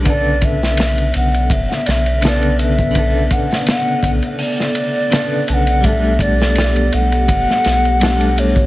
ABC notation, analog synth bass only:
X:1
M:4/4
L:1/8
Q:"Swing 16ths" 1/4=83
K:Bm
V:1 name="Analog synth bass" clef=bass
B,,,3 B,,, F,,, B,,,3- | B,,, z2 B,,, z3 B,,,- | B,,,3 B,,, F,,, B,,,3 |]